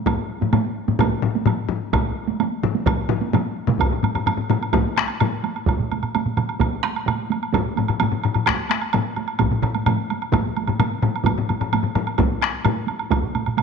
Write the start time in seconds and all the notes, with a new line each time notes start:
0.06 taiko, taiko low-mid, taiko high, high woodblock
0.41 taiko low-mid, taiko high
0.53 taiko low-mid, taiko high, high woodblock
0.65 taiko high
0.88 taiko low-mid, taiko high
0.99 taiko, taiko low-mid, taiko high, high woodblock
1.22 taiko low-mid
1.35 taiko high
1.46 taiko low-mid, taiko high, high woodblock
1.69 taiko low-mid
1.93 taiko, taiko low-mid, taiko mid, taiko high, high woodblock
2.27 taiko high
2.40 taiko high, high woodblock
2.63 taiko low-mid, taiko mid
2.75 taiko high
2.86 taiko, taiko low-mid, taiko mid, taiko high, high woodblock
3.09 taiko low-mid, taiko mid
3.22 taiko high
3.33 taiko low-mid, taiko mid, taiko high, high woodblock
3.67 taiko low-mid, taiko mid, taiko high
3.79 taiko, taiko low-mid, taiko high, high woodblock
3.91 taiko low-mid, taiko high
4.03 taiko low-mid, taiko high, high woodblock
4.15 taiko low-mid, high woodblock
4.26 taiko low-mid, taiko high, high woodblock
4.38 taiko low-mid, taiko high
4.50 taiko low-mid, taiko high, high woodblock
4.61 taiko high, high woodblock
4.73 taiko, taiko low-mid, taiko high, high woodblock
4.87 taiko high
4.96 taiko rim, taiko high, high woodblock
5.08 taiko high, high woodblock
5.20 taiko low-mid, taiko high, high woodblock
5.33 taiko high
5.44 taiko high, high woodblock
5.56 taiko high, high woodblock
5.66 taiko, taiko mid, taiko high, high woodblock
5.80 taiko mid, taiko high
5.91 taiko mid, taiko high, high woodblock
6.02 taiko mid, high woodblock
6.15 taiko mid, taiko high, high woodblock
6.26 taiko mid, taiko high
6.37 taiko mid, taiko high, high woodblock
6.49 taiko high, high woodblock
6.60 taiko, taiko mid, taiko high, high woodblock
6.73 taiko high
6.84 taiko rim, taiko high, high woodblock
6.96 taiko high, high woodblock
7.06 taiko mid, taiko high, high woodblock
7.19 taiko high
7.30 taiko high, high woodblock
7.42 taiko high, high woodblock
7.53 taiko, taiko low-mid, taiko high, high woodblock
7.65 taiko high
7.76 taiko low-mid, taiko high, high woodblock
7.88 taiko low-mid, high woodblock
8.00 taiko low-mid, taiko high, high woodblock
8.12 taiko low-mid, taiko high
8.23 taiko low-mid, high woodblock
8.34 taiko low-mid, taiko high, high woodblock
8.46 taiko rim, taiko, taiko high, high woodblock
8.58 taiko high
8.69 taiko rim, taiko high, high woodblock
8.81 taiko high, high woodblock
8.93 taiko low-mid, taiko high, high woodblock
9.06 taiko high
9.16 taiko high, high woodblock
9.28 taiko high, high woodblock
9.39 taiko, taiko low-mid, taiko mid, taiko high, high woodblock
9.51 taiko low-mid, taiko mid, taiko high
9.63 taiko low-mid, taiko mid, high woodblock
9.75 taiko high, high woodblock
9.86 taiko low-mid, taiko mid, taiko high, high woodblock
9.99 taiko high
10.10 taiko high, high woodblock
10.22 taiko high, high woodblock
10.32 taiko, taiko low-mid, taiko mid, taiko high, high woodblock
10.45 taiko high
10.57 taiko high, high woodblock
10.67 taiko low-mid, taiko mid, taiko high, high woodblock
10.79 taiko low-mid, taiko mid, taiko high, high woodblock
10.93 taiko high
11.03 taiko low-mid, taiko mid, taiko high, high woodblock
11.16 taiko high, high woodblock
11.24 taiko, taiko low-mid, taiko high, high woodblock
11.38 taiko low-mid, taiko high
11.49 taiko low-mid, taiko high, high woodblock
11.61 taiko low-mid, high woodblock
11.73 taiko low-mid, taiko high, high woodblock
11.84 taiko low-mid, taiko high
11.95 taiko low-mid, taiko high, high woodblock
12.07 taiko high, high woodblock
12.18 taiko, taiko low-mid, taiko high, high woodblock
12.31 taiko high
12.42 taiko rim, taiko high, high woodblock
12.53 taiko high
12.65 taiko low-mid, taiko high, high woodblock
12.76 taiko high
12.87 taiko high, high woodblock
12.99 taiko high, high woodblock
13.10 taiko, taiko mid, taiko high, high woodblock
13.23 taiko mid, taiko high
13.35 taiko mid, taiko high, high woodblock
13.46 taiko mid, high woodblock
13.57 taiko mid, taiko high, high woodblock